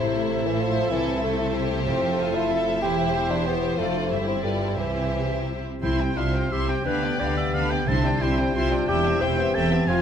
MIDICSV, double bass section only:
0, 0, Header, 1, 2, 480
1, 0, Start_track
1, 0, Key_signature, 0, "major"
1, 0, Tempo, 313480
1, 1415, Time_signature, 3, 2, 24, 8
1, 3340, Tempo, 322754
1, 6700, Tempo, 345622
1, 10060, Tempo, 335196
1, 14582, End_track
2, 0, Start_track
2, 0, Title_t, "Double bass section"
2, 0, Program_c, 0, 48
2, 0, Note_on_c, 0, 33, 50
2, 1413, Note_off_c, 0, 33, 0
2, 1419, Note_on_c, 0, 36, 54
2, 2828, Note_off_c, 0, 36, 0
2, 2851, Note_on_c, 0, 29, 60
2, 4288, Note_on_c, 0, 28, 53
2, 4291, Note_off_c, 0, 29, 0
2, 5728, Note_off_c, 0, 28, 0
2, 5732, Note_on_c, 0, 29, 52
2, 6202, Note_off_c, 0, 29, 0
2, 6212, Note_on_c, 0, 31, 49
2, 7179, Note_on_c, 0, 36, 45
2, 7181, Note_off_c, 0, 31, 0
2, 8391, Note_off_c, 0, 36, 0
2, 8630, Note_on_c, 0, 36, 49
2, 9054, Note_off_c, 0, 36, 0
2, 9109, Note_on_c, 0, 36, 47
2, 9530, Note_off_c, 0, 36, 0
2, 9588, Note_on_c, 0, 36, 48
2, 10005, Note_off_c, 0, 36, 0
2, 10054, Note_on_c, 0, 38, 50
2, 10485, Note_off_c, 0, 38, 0
2, 10547, Note_on_c, 0, 38, 51
2, 10974, Note_off_c, 0, 38, 0
2, 11036, Note_on_c, 0, 38, 53
2, 11461, Note_off_c, 0, 38, 0
2, 11518, Note_on_c, 0, 36, 56
2, 11944, Note_off_c, 0, 36, 0
2, 12001, Note_on_c, 0, 36, 55
2, 12424, Note_off_c, 0, 36, 0
2, 12485, Note_on_c, 0, 36, 62
2, 12905, Note_off_c, 0, 36, 0
2, 12961, Note_on_c, 0, 28, 64
2, 13379, Note_off_c, 0, 28, 0
2, 13439, Note_on_c, 0, 28, 66
2, 13857, Note_off_c, 0, 28, 0
2, 13914, Note_on_c, 0, 28, 64
2, 14329, Note_off_c, 0, 28, 0
2, 14387, Note_on_c, 0, 29, 61
2, 14582, Note_off_c, 0, 29, 0
2, 14582, End_track
0, 0, End_of_file